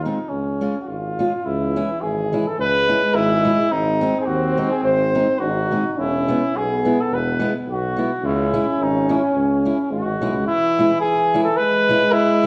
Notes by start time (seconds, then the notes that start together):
Already playing: D#2
0.03 G#3 C4 D#4
0.29 C#2 C#4
0.61 G#3 C#4 F4
0.81 F#4
0.87 G#1 F4
1.19 G#3 C#4 F4
1.45 C#2 E3 E4
1.76 G#3 C#4 E4
2.02 G#1 G#4
2.33 G#3 C#4 E4
2.47 A4
2.58 C#2 G#3 B4
2.88 G#3 C#4 E4
3.14 G#1 E4
3.45 G#3 C#4 E4
3.71 G#1 C4 D#4
4.01 G#3 C4 D#4
4.21 G#4
4.26 D#2 F#4
4.57 G#3 C4 D#4
4.71 G#4
4.83 G#1 C5
5.15 G#3 C4 D#4
5.40 G#1 D#4 F#4
5.71 G#3 C4 D#4
5.93 F#4
5.97 E1 C#4 E4
6.28 G#3 B3 E4
6.54 B1 B3 G#4
6.85 G#3 B3 E4
7.01 A4
7.11 E1 B4
7.40 G#3 B3 E4
7.67 B1
7.71 F#4
7.97 G#3 B3 E4
8.23 C#2 C#4 E4
8.54 G#3 C#4 E4
8.79 G#1 D#4
9.09 G#3 C#4 E4
9.34 C#2
9.65 G#3 C#4 E4
9.90 G#1 G#3 F#4
10.04 G#1
10.20 B1 G#3 C#4 E4
10.33 C#2
10.47 E3 E4
10.79 G#3 C#4 E4
11.00 G#4
11.34 G#3 C#4 E4
11.44 A4
11.57 G#3 B4
11.89 G#3 C#4 E4
12.12 E4
12.43 G#3